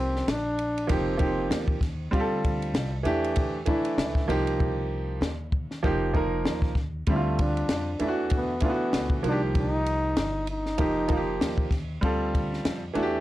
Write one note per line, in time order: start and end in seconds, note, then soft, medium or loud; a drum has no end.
0.00 0.24 C2 medium
0.00 0.34 F3 medium
0.00 0.35 A#3 medium
0.00 0.32 C4 loud
0.00 0.35 D#4 medium
0.00 0.35 G4 medium
0.16 snare soft
0.28 0.86 A#1 medium
0.28 0.95 D4 loud
0.28 snare loud
0.28 hi-hat pedal soft
0.28 ride medium
0.59 ride soft
0.78 ride soft
0.87 1.48 F1 medium
0.87 1.14 F3 medium
0.87 1.14 A#3 medium
0.87 1.15 D#4 medium
0.87 1.15 G4 medium
0.87 kick medium
0.87 ride medium
0.93 1.84 C4 medium
1.17 1.77 F3 medium
1.17 1.77 A#3 medium
1.17 1.78 D#4 medium
1.17 1.78 G4 medium
1.17 kick medium
1.17 ride medium
1.51 2.10 D#2 medium
1.51 snare loud
1.51 hi-hat pedal medium
1.51 ride medium
1.68 kick medium
1.81 kick medium
1.81 snare soft
1.81 ride medium
2.11 2.72 D2 medium
2.11 2.91 G3 medium
2.11 2.91 C4 medium
2.11 2.92 F4 medium
2.11 2.21 G4 medium
2.11 kick loud
2.11 ride medium
2.20 2.95 A4 medium
2.45 kick medium
2.45 ride medium
2.62 ride soft
2.74 3.04 C2 medium
2.74 snare loud
2.74 hi-hat pedal soft
2.74 ride medium
3.03 3.64 E2 medium
3.03 3.56 E3 medium
3.03 3.57 A3 medium
3.03 3.57 D4 medium
3.03 3.57 G4 medium
3.03 ride soft
3.24 ride soft
3.36 kick loud
3.36 ride medium
3.65 4.25 E3 medium
3.65 4.25 A3 medium
3.65 4.26 D4 medium
3.65 4.26 E4 medium
3.65 kick medium
3.65 ride medium
3.85 ride soft
3.98 4.28 C#2 loud
3.98 snare loud
3.98 hi-hat pedal medium
3.98 ride medium
4.15 kick medium
4.15 snare soft
4.28 5.18 C2 loud
4.28 5.29 F3 medium
4.28 5.29 A#3 medium
4.28 5.29 D#4 medium
4.28 5.30 G4 medium
4.28 ride medium
4.47 ride soft
4.60 kick loud
5.21 5.80 D#2 medium
5.21 snare loud
5.52 kick medium
5.71 snare soft
5.83 6.43 F1 medium
5.83 6.09 F3 medium
5.83 6.10 A#3 medium
5.83 6.10 D#4 medium
5.83 6.10 G4 medium
5.83 kick medium
6.13 6.72 F3 medium
6.13 6.73 A#3 medium
6.13 6.73 D#4 medium
6.13 6.73 A#4 medium
6.13 kick medium
6.45 7.04 D#2 medium
6.45 snare loud
6.62 kick medium
6.62 snare soft
6.75 kick medium
6.75 snare soft
7.07 7.66 D2 loud
7.07 7.86 D3 medium
7.07 7.86 G3 medium
7.07 7.43 A3 medium
7.07 7.87 C4 medium
7.07 7.16 E4 medium
7.07 kick loud
7.07 ride medium
7.16 7.91 F4 medium
7.39 8.02 D4 loud
7.39 kick medium
7.39 ride medium
7.57 ride soft
7.69 7.99 F2 medium
7.69 snare loud
7.69 hi-hat pedal soft
7.69 ride medium
7.99 8.59 E2 medium
7.99 8.51 E3 medium
7.99 8.52 A3 medium
7.99 8.52 D4 medium
7.99 8.09 E4 medium
7.99 ride medium
8.08 8.56 F#4 medium
8.30 kick loud
8.30 ride medium
8.36 8.63 B3 medium
8.60 9.20 E3 medium
8.60 9.20 A3 medium
8.60 9.21 D4 medium
8.60 8.70 F4 medium
8.60 kick medium
8.60 ride medium
8.66 9.22 B3 medium
8.70 9.24 F#4 medium
8.93 9.23 C#2 medium
8.93 snare loud
8.93 hi-hat pedal medium
8.93 ride medium
9.10 kick medium
9.23 10.13 C2 medium
9.23 10.24 D#3 medium
9.23 10.24 F3 medium
9.23 10.24 A#3 medium
9.23 9.32 F#4 medium
9.23 ride medium
9.28 9.41 D4 loud
9.28 10.28 G4 medium
9.55 kick loud
9.55 ride medium
9.59 10.46 D#4 loud
9.86 ride medium
10.17 10.79 G1 medium
10.17 snare loud
10.17 hi-hat pedal medium
10.17 ride medium
10.47 11.69 D#4 loud
10.47 ride soft
10.66 snare soft
10.78 11.38 F1 medium
10.78 11.04 F3 medium
10.78 11.05 A#3 medium
10.78 11.05 D#4 medium
10.78 11.05 G4 medium
10.78 kick medium
10.78 ride medium
11.08 11.67 F3 medium
11.08 11.68 A#3 medium
11.08 11.68 D#4 medium
11.08 11.18 F4 medium
11.08 kick medium
11.08 ride medium
11.17 11.72 G4 medium
11.41 12.00 D#2 medium
11.41 snare loud
11.41 hi-hat pedal medium
11.41 ride medium
11.58 kick medium
11.71 kick medium
11.71 snare soft
11.71 ride medium
12.01 12.62 D2 loud
12.01 12.81 G3 medium
12.01 12.81 C4 medium
12.01 12.81 F4 medium
12.01 12.82 A4 loud
12.01 kick loud
12.01 ride medium
12.35 kick medium
12.35 ride medium
12.53 snare soft
12.65 12.94 F2 medium
12.65 snare loud
12.65 hi-hat pedal medium
12.65 ride medium
12.94 13.20 E2 medium
12.94 13.20 E3 medium
12.94 13.20 A3 medium
12.94 13.20 D4 medium
12.94 13.03 F#4 medium
12.94 ride soft
13.03 13.20 G4 medium